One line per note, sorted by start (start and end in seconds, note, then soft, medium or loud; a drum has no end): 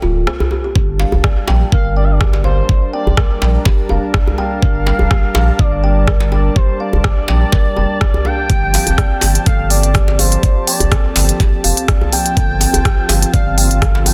0.02 0.27 D1 loud
0.02 0.15 F4 medium
0.02 djembe tone medium
0.27 0.34 C5 medium
0.27 cross-stick loud
0.27 djembe tone medium
0.40 djembe bass loud
0.51 0.63 G4 medium
0.51 djembe tone medium
0.64 0.74 G4 medium
0.75 1.05 G1 loud
0.75 8.46 G3 medium
0.75 8.46 D4 medium
0.75 0.87 G4 medium
0.75 8.46 A#4 medium
0.75 14.14 A5 medium
0.75 kick loud
0.99 1.12 F5 medium
0.99 djembe slap medium
1.12 1.20 F1 loud
1.12 djembe bass loud
1.24 1.32 G1 medium
1.24 1.36 D5 medium
1.24 kick loud
1.24 cross-stick loud
1.48 1.64 A#1 medium
1.48 1.60 G5 loud
1.48 djembe slap loud
1.48 djembe tone medium
1.72 2.62 G1 medium
1.72 1.79 A#4 medium
1.72 1.95 F5 loud
1.72 kick loud
1.96 2.05 D5 loud
1.96 2.08 G5 medium
2.04 2.13 F5 medium
2.11 2.44 D5 loud
2.20 2.32 G4 medium
2.20 kick loud
2.20 cross-stick loud
2.20 djembe tone medium
2.33 djembe slap medium
2.44 2.90 C5 loud
2.44 2.57 F5 medium
2.44 djembe tone medium
2.69 2.81 D5 medium
2.69 kick loud
2.93 3.62 D5 loud
2.93 3.05 G5 medium
3.06 3.13 F1 loud
3.06 djembe bass medium
3.17 3.25 G1 medium
3.17 3.24 A#4 medium
3.17 kick loud
3.17 cross-stick loud
3.42 3.57 A#1 medium
3.42 3.53 G5 medium
3.42 djembe slap medium
3.42 djembe tone medium
3.65 3.78 G4 medium
3.65 kick loud
3.65 djembe slap loud
3.89 3.98 F1 medium
3.89 4.02 F5 medium
3.89 djembe tone medium
4.14 4.27 D5 medium
4.14 kick loud
4.14 cross-stick loud
4.14 djembe tone loud
4.27 djembe bass medium
4.38 5.61 F5 loud
4.38 4.50 G5 loud
4.38 djembe tone medium
4.62 4.92 G1 loud
4.62 4.70 A#4 medium
4.62 kick loud
4.87 4.99 G5 medium
4.87 djembe slap medium
4.99 5.07 F1 loud
4.99 djembe bass medium
5.11 5.19 G1 medium
5.11 5.23 G4 medium
5.11 kick loud
5.11 cross-stick loud
5.34 5.51 A#1 medium
5.34 5.47 F5 medium
5.34 djembe slap loud
5.34 djembe tone medium
5.59 6.49 G1 loud
5.59 6.31 D5 loud
5.59 5.72 D5 medium
5.59 kick loud
5.84 5.95 G5 loud
6.08 6.15 A#4 medium
6.08 kick loud
6.08 cross-stick loud
6.08 djembe tone medium
6.20 djembe slap medium
6.32 6.58 D5 medium
6.32 6.44 G5 medium
6.32 djembe tone medium
6.56 6.68 G4 medium
6.56 6.80 C5 loud
6.56 kick loud
6.80 8.27 D5 loud
6.80 6.93 F5 medium
6.93 7.00 F1 loud
6.93 djembe bass medium
7.04 7.12 G1 medium
7.04 7.17 D5 medium
7.04 kick loud
7.04 cross-stick loud
7.28 7.44 A#1 medium
7.28 7.40 G5 medium
7.28 djembe slap medium
7.28 djembe tone medium
7.52 7.60 A#4 medium
7.52 kick loud
7.52 djembe slap loud
7.77 7.85 F1 loud
7.77 7.89 G5 medium
7.77 djembe tone medium
8.01 8.13 G4 medium
8.01 kick loud
8.01 cross-stick loud
8.01 djembe tone medium
8.14 djembe bass medium
8.25 8.38 F5 medium
8.25 9.46 G5 loud
8.25 djembe tone medium
8.50 8.79 G1 medium
8.50 14.14 F3 medium
8.50 14.14 C4 medium
8.50 8.61 G4 medium
8.50 12.33 G4 medium
8.50 kick loud
8.50 closed hi-hat soft
8.74 8.86 F5 medium
8.74 open hi-hat medium
8.74 djembe slap medium
8.87 8.94 F1 loud
8.87 closed hi-hat medium
8.87 djembe bass medium
8.98 9.06 G1 medium
8.98 9.10 D5 medium
8.98 kick loud
8.98 cross-stick loud
8.98 closed hi-hat soft
9.21 9.38 G1 medium
9.21 9.34 G5 loud
9.21 open hi-hat medium
9.21 djembe slap loud
9.21 djembe tone medium
9.35 closed hi-hat medium
9.46 10.36 G1 medium
9.46 9.53 A4 medium
9.46 9.69 F5 loud
9.46 kick loud
9.46 closed hi-hat soft
9.70 10.21 D5 loud
9.70 9.82 G5 medium
9.70 open hi-hat medium
9.83 closed hi-hat medium
9.94 10.06 G4 medium
9.94 kick loud
9.94 cross-stick loud
9.94 closed hi-hat soft
9.94 djembe tone medium
10.08 djembe slap medium
10.19 10.67 C5 loud
10.19 10.31 F5 medium
10.19 open hi-hat medium
10.19 djembe tone medium
10.32 closed hi-hat soft
10.43 10.56 D5 medium
10.43 kick loud
10.43 closed hi-hat soft
10.67 11.36 D5 loud
10.67 10.79 G5 medium
10.67 open hi-hat medium
10.80 10.87 F1 loud
10.80 closed hi-hat medium
10.80 djembe bass medium
10.92 11.00 G1 medium
10.92 10.99 A4 medium
10.92 kick loud
10.92 cross-stick loud
10.92 closed hi-hat soft
11.16 11.31 G1 medium
11.16 11.28 G5 medium
11.16 open hi-hat medium
11.16 djembe slap loud
11.16 djembe tone medium
11.29 closed hi-hat medium
11.40 11.52 G4 medium
11.40 kick loud
11.40 closed hi-hat soft
11.40 djembe slap medium
11.64 11.72 F1 loud
11.64 11.77 F5 medium
11.64 open hi-hat medium
11.64 djembe tone medium
11.77 closed hi-hat medium
11.88 12.01 D5 medium
11.88 kick loud
11.88 cross-stick loud
11.88 closed hi-hat soft
11.88 djembe tone medium
12.01 djembe bass medium
12.12 13.29 G5 loud
12.12 12.24 G5 loud
12.12 open hi-hat medium
12.12 djembe tone medium
12.26 closed hi-hat medium
12.37 12.66 G1 loud
12.37 14.14 F4 medium
12.37 12.44 A4 medium
12.37 kick loud
12.37 closed hi-hat soft
12.61 12.73 G5 medium
12.61 open hi-hat medium
12.61 djembe slap medium
12.74 12.81 F1 loud
12.74 closed hi-hat medium
12.74 djembe bass medium
12.85 12.93 G1 medium
12.85 12.97 G4 medium
12.85 kick loud
12.85 cross-stick loud
12.85 closed hi-hat soft
13.09 13.25 G1 medium
13.09 13.22 F5 medium
13.09 open hi-hat medium
13.09 djembe slap loud
13.09 djembe tone medium
13.22 closed hi-hat medium
13.33 14.14 G1 medium
13.33 13.46 D5 medium
13.33 13.56 F5 loud
13.33 kick loud
13.33 closed hi-hat soft
13.57 14.07 F5 loud
13.57 13.69 G5 loud
13.57 open hi-hat medium
13.71 closed hi-hat medium
13.82 kick loud
13.82 cross-stick loud
13.82 closed hi-hat soft
13.82 djembe tone medium
13.95 djembe slap medium
14.06 14.14 G5 loud
14.06 14.14 G5 medium
14.06 open hi-hat medium
14.06 djembe tone medium